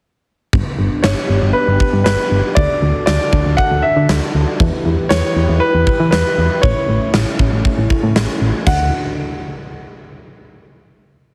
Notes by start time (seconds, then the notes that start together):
0.53 G1 B3 D4 G4, kick
0.79 G1
1.02 G1 C#5, snare
1.29 G1
1.42 G1
1.53 B4
1.68 G1
1.80 kick
1.93 G2
2.04 G1 B4, snare
2.31 G1
2.55 D2 D3 D4 F#4 A4 D5, kick
2.82 D2
3.06 D2 D5, snare
3.33 D2, kick
3.46 D2
3.57 F#5, kick
3.71 D2
3.82 E5
3.96 D3
4.09 D2, snare
4.34 D2
4.60 E2 E3 E4 G4 B4, kick
4.85 E2
5.09 E2 C#5, snare
5.36 E2
5.49 E2
5.60 B4
5.74 E2
5.87 kick
6.00 E3
6.11 E2 B4, snare
6.38 E2
6.62 A1 A3 C#4 C#5, kick
6.89 A1
7.14 A1, snare
7.39 A1, kick
7.52 A1
7.65 kick
7.78 A1
7.90 kick
8.03 A2
8.16 A1, snare
8.41 A1
8.67 D2 D3 D4 F#4 A4 F#5, kick, crash